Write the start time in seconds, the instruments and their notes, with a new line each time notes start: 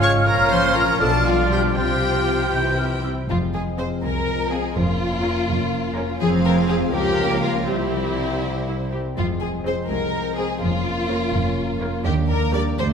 Already playing: double bass section G#1, cello section G#2, harp C#3 G#3 F4, french horn section G#3 C#4, bassoon F4, flute F6
0.01 violin section G#3 F4 C#6, harp C#4, clarinet C#5, viola section C#5
0.25 double bass section A#1, cello section A#2, harp A#2, french horn section F3, violin section C#4 F4 A#5, clarinet A#4, viola section A#4, oboe C#5
0.50 harp F3, clarinet C5, viola section C5, violin section C6
0.76 harp C#4 F4, clarinet A#4, viola section A#4, violin section A#5
1.00 double bass section B1, harp B2, cello section B2, french horn section D4, bassoon D4, violin section D4 F4 A5, clarinet A4, viola section A4, oboe D5
1.25 harp G3, clarinet F4, viola section F4, violin section F5
1.51 harp D4 F4, clarinet G4, viola section G4, violin section G5
1.76 double bass section C2, harp C3, cello section C3, violin section C4 F4 G5, french horn section C4, clarinet G4, viola section G4, bassoon G4, oboe C5, flute F6
2.02 harp C4
2.28 harp C4 F4
2.53 double bass section C2, cello section C3, harp C3, french horn section E3, violin section C4 E4, flute G6
2.79 harp C4, flute F6
3.04 harp C4 E4, flute E6
3.29 double bass section F1, cello section F2, harp F3, french horn section G#3 C4, violin section F4
3.54 harp G#3, violin section G#4
3.79 viola section C4 G#4, harp F4, violin section C5 F5
4.03 double bass section C2, cello section C2, harp G#4, violin section A#4
4.28 harp F4
4.52 viola section C4 G#4, harp C4, violin section G#4 F5
4.75 double bass section F1, cello section F2, harp F3, french horn section A#3 C#4, violin section F4
5.00 harp A#3
5.24 viola section C#4 A#4, harp F4, violin section F5
5.47 double bass section F1, cello section F2, harp A#4
5.72 harp F4
5.96 viola section C#4 A#4, harp C#4, violin section F5
6.20 double bass section F1, cello section F2, harp F3, french horn section F3 C4, viola section C4 G#4, violin section G#4 F5
6.45 harp C4, violin section A#4
6.69 harp C4 F4, violin section G#4
6.93 double bass section C#2, cello section C#2, harp C#3, viola section A#3 A#4, french horn section A#3, violin section G4 F5
7.18 harp A#3
7.42 harp A#3 F4, violin section F4
7.61 violin section F4
7.67 double bass section C2, cello section C2, harp C3, french horn section G3 C4, viola section C4 G4, violin section E4 C5
7.92 harp G3
8.18 harp C5
8.42 viola section C4, harp G4
8.67 viola section E4, harp C5
8.92 harp C4, viola section G4
9.17 double bass section F1, cello section F2, harp F3, french horn section G#3, violin section F4
9.41 harp G#3, violin section G#4
9.66 viola section C4 G#4, harp C5, violin section C5
9.90 double bass section C2, cello section C2, harp G#4, violin section A#4
10.15 harp C5
10.38 viola section C4 G#4, harp C4, violin section G#4 C5
10.61 double bass section F1, cello section F2, harp F3, french horn section A#3 C#4, violin section F4
10.86 harp A#3
11.10 viola section A#3 A#4, harp A#4, violin section C#5
11.33 double bass section F1, cello section F2, harp C#4
11.58 harp A#4
11.81 viola section A#3 A#4, harp C#4, violin section C#5
12.05 cello section D#2, double bass section D#2, harp D#3, french horn section A#3 D4, violin section G4
12.29 harp D4, violin section A#4
12.54 viola section G3 A#4, harp D4 G4, violin section D5
12.79 double bass section D2, cello section D2, harp D3, french horn section A3 D4, violin section C5